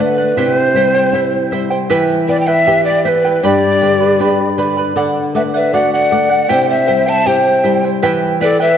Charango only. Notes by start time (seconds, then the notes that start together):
0.00 A4 D5 F#5
0.18 D5 F#5
0.37 E4 G4 C5 E5 G5
0.76 E4 C5 E5 G5
0.95 E4 C5 G5
1.14 E4 C5 E5 G5
1.52 E4 C5 E5 G5
1.70 E4 C5 G5
1.90 E4 G4 B4 E5 G5
2.27 E4 B4 E5 G5
2.47 E4 B4 G5
2.66 E4 B4 E5 G5
3.05 E4 B4 E5 G5
3.25 E4 B4 G5
3.44 G4 B4 D5 G5 B5
3.81 B4 D5 G5 B5
4.00 B4 D5 B5
4.20 B4 D5 G5 B5
4.58 B4 D5 G5 B5
4.77 B4 D5 B5
4.96 A4 D5 F#5
5.35 A4 D5 F#5
5.54 D5 F#5
5.73 A4 D5 F#5
6.11 A4 D5 F#5
6.29 D5 F#5
6.49 E4 G4 C5 E5 G5
6.86 E4 C5 E5 G5
7.06 E4 C5 G5
7.25 E4 C5 E5 G5
7.64 E4 C5 E5 G5
7.84 E4 C5 G5
8.02 E4 G4 B4 E5 G5
8.41 E4 B4 E5 G5
8.60 E4 B4 G5